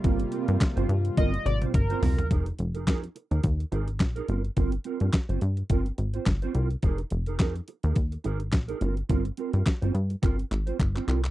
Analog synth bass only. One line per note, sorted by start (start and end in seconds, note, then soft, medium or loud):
0.04 0.25 G1 loud
0.48 0.58 G2 loud
0.77 0.86 G1 loud
0.89 1.10 G2 medium
1.17 1.39 G1 loud
1.46 1.67 G#1 loud
1.74 1.95 G1 loud
2.02 2.24 C2 loud
2.31 2.52 F1 medium
2.59 2.89 F1 loud
2.87 3.09 F2 loud
3.31 3.41 D#2 medium
3.44 3.65 D#2 medium
3.72 4.02 G#1 loud
4.00 4.22 A#1 loud
4.29 4.50 G1 loud
4.57 4.78 G1 loud
5.01 5.10 G2 medium
5.29 5.39 G1 medium
5.42 5.63 G2 medium
5.70 5.91 G1 medium
5.98 6.20 G#1 medium
6.26 6.48 G1 medium
6.55 6.76 C2 loud
6.83 7.04 F1 medium
7.11 7.41 F1 loud
7.40 7.61 F2 loud
7.84 7.93 D#2 loud
7.96 8.18 D#2 medium
8.25 8.54 G#1 loud
8.53 8.74 A#1 loud
8.81 9.03 G1 loud
9.10 9.31 G1 loud
9.54 9.63 G2 medium
9.82 9.92 G1 medium
9.94 10.16 G2 medium
10.23 10.44 G1 medium
10.51 10.72 G#1 medium
10.79 11.01 G1 medium
11.08 11.29 C2 loud